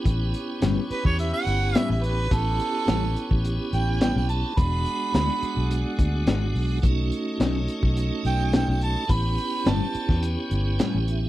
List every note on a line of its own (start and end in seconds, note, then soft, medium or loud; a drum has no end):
0.00 2.27 B3 medium
0.00 2.27 C#4 medium
0.00 2.28 E4 medium
0.00 2.28 G4 medium
0.00 4.53 G4 medium
0.00 4.54 B4 medium
0.00 4.53 C#5 medium
0.05 0.32 A1 loud
0.05 kick loud
0.05 closed hi-hat medium
0.34 closed hi-hat medium
0.61 0.76 G1 medium
0.61 0.79 A2 medium
0.61 0.79 G3 medium
0.61 0.79 B3 medium
0.61 0.80 C#4 medium
0.61 snare loud
0.61 closed hi-hat medium
0.90 1.05 B4 medium
0.90 muted fingered electric bass stroke soft
0.90 closed hi-hat medium
1.05 1.32 E2 medium
1.05 1.18 C#5 medium
1.05 kick medium
1.19 1.33 E5 medium
1.19 closed hi-hat medium
1.34 1.78 F#5 loud
1.47 1.73 G1 medium
1.47 closed hi-hat medium
1.75 1.92 A2 medium
1.75 1.93 G3 medium
1.75 1.93 B3 medium
1.75 1.93 C#4 medium
1.75 1.88 E5 loud
1.75 snare loud
1.75 closed hi-hat medium
1.90 2.29 A1 medium
1.90 2.05 E5 medium
2.04 2.34 B4 medium
2.04 closed hi-hat medium
2.31 2.58 A1 loud
2.31 4.53 B3 medium
2.31 4.53 C#4 medium
2.31 4.54 E4 medium
2.31 4.54 G4 medium
2.31 3.42 A4 loud
2.31 kick loud
2.31 closed hi-hat medium
2.60 closed hi-hat medium
2.87 3.15 A1 loud
2.87 3.05 A2 medium
2.87 3.05 G3 medium
2.87 3.06 B3 medium
2.87 3.06 C#4 medium
2.87 snare loud
2.87 closed hi-hat medium
3.16 closed hi-hat medium
3.31 3.58 A1 medium
3.31 kick medium
3.45 closed hi-hat medium
3.73 4.13 A1 medium
3.73 4.00 G5 medium
3.73 closed hi-hat medium
4.01 4.18 A2 medium
4.01 4.19 G3 medium
4.01 4.19 B3 medium
4.01 4.19 C#4 medium
4.01 4.15 G5 medium
4.01 snare loud
4.01 closed hi-hat medium
4.16 4.43 B1 medium
4.16 4.29 G5 medium
4.16 snare soft
4.29 4.59 A5 medium
4.29 closed hi-hat medium
4.57 4.84 E1 loud
4.57 6.79 G#3 medium
4.57 6.80 B3 medium
4.57 6.80 D4 medium
4.57 6.80 F#4 medium
4.57 6.81 G#4 medium
4.57 6.82 D5 medium
4.57 6.81 F#5 medium
4.57 5.12 B5 medium
4.57 kick loud
4.57 closed hi-hat medium
4.86 closed hi-hat medium
5.14 5.28 D2 medium
5.14 5.31 E3 medium
5.14 5.31 G#3 medium
5.14 5.32 D4 medium
5.14 5.32 F#4 medium
5.14 5.69 B5 loud
5.14 snare loud
5.14 closed hi-hat medium
5.43 muted fingered electric bass stroke soft
5.43 closed hi-hat medium
5.57 5.84 B1 medium
5.71 closed hi-hat medium
5.99 6.26 D2 medium
5.99 kick medium
5.99 closed hi-hat medium
6.26 6.52 G#1 medium
6.26 6.44 E3 medium
6.26 6.44 G#3 medium
6.26 6.45 D4 medium
6.26 6.45 F#4 medium
6.26 snare loud
6.26 closed hi-hat medium
6.55 6.80 B1 medium
6.55 open hi-hat medium
6.82 7.10 B1 loud
6.82 9.05 A3 medium
6.82 9.05 C#4 medium
6.82 9.05 D#4 medium
6.82 9.06 F#4 medium
6.82 9.07 A4 medium
6.82 9.07 C#5 medium
6.82 9.07 D#5 medium
6.82 kick loud
6.82 closed hi-hat medium
7.12 closed hi-hat medium
7.39 7.67 B1 medium
7.39 7.57 B2 medium
7.39 7.57 D#3 loud
7.39 7.58 A3 medium
7.39 7.58 C#4 medium
7.39 snare loud
7.39 closed hi-hat medium
7.68 closed hi-hat medium
7.83 8.10 B1 medium
7.83 kick medium
7.97 closed hi-hat medium
8.25 8.65 B1 medium
8.25 8.53 G5 medium
8.25 closed hi-hat medium
8.52 8.70 B2 medium
8.52 8.71 D#3 medium
8.52 8.71 A3 medium
8.52 8.71 C#4 medium
8.52 8.68 G5 medium
8.52 snare loud
8.52 closed hi-hat medium
8.68 8.95 B1 medium
8.68 8.81 G5 medium
8.81 9.13 A5 medium
8.81 closed hi-hat medium
9.07 9.36 A1 loud
9.07 11.29 B3 medium
9.07 11.29 C#4 medium
9.07 11.29 E4 medium
9.07 11.29 G4 medium
9.07 11.29 B4 medium
9.07 11.29 C#5 medium
9.07 11.29 G5 medium
9.07 9.71 B5 medium
9.07 kick loud
9.07 closed hi-hat medium
9.38 closed hi-hat medium
9.65 9.80 G1 medium
9.65 9.83 A2 medium
9.65 9.83 G3 medium
9.65 9.84 B3 medium
9.65 9.84 C#4 medium
9.65 snare loud
9.65 closed hi-hat medium
9.69 10.23 A5 medium
9.94 muted fingered electric bass stroke soft
9.94 closed hi-hat medium
10.09 10.36 E2 medium
10.09 kick medium
10.09 snare soft
10.23 closed hi-hat medium
10.51 10.78 G1 medium
10.51 closed hi-hat medium
10.79 10.96 A2 medium
10.79 10.97 G3 medium
10.79 10.97 B3 medium
10.79 10.97 C#4 loud
10.79 11.05 G5 medium
10.79 snare loud
10.79 closed hi-hat medium
10.95 11.29 A1 medium
11.07 11.29 E5 medium
11.07 closed hi-hat medium